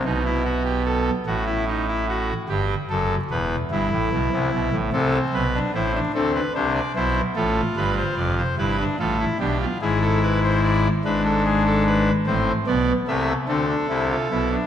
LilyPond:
<<
  \new Staff \with { instrumentName = "Pipe organ" } { \time 12/8 \key a \minor \tempo 4. = 49 << { r1. | a'8 b'8 c''8 a'16 b'16 c''16 d''16 c''8 a'8 b'16 c''16 d''16 c''16 b'8 a'8 g'8 | gis'16 a'16 b'16 c''16 d''8 b'16 a'16 gis'16 a'16 b'8 c''8 d''8 e''8 a'4. | } \\ { dis'16 e'16 fis'16 g'16 a'8 fis'16 e'16 dis'16 e'16 fis'8 g'8 a'8 b'8 e'4. | c'8. d'16 e'16 d'16 c'8 d'8 e'8 f'4. e'16 d'16 f'16 e'16 d'16 f'16 | e'4. d'4. c'8 b8 a8 c'16 d'16 e'16 f'16 e'16 d'16 | } >> }
  \new Staff \with { instrumentName = "Pipe organ" } { \clef bass \time 12/8 \key a \minor <b,, b,>4. <a,, a,>4. <g,, g,>8 <fis,, fis,>8 <e,, e,>8 <g,, g,>16 <a,, a,>16 <b,, b,>16 <c, c>16 <b,, b,>16 <a,, a,>16 | <c, c>8 <b,, b,>8 <a,, a,>8 <d, d>8 <c, c>8 <b,, b,>8 <a,, a,>8 <g,, g,>8 <f,, f,>8 <g,, g,>8 <a,, a,>8 <b,, b,>8 | <gis,, gis,>4. <gis,, gis,>4. <a,, a,>8 <b,, b,>8 <c, c>8 <d, d>8 <c, c>8 <b,, b,>8 | }
>>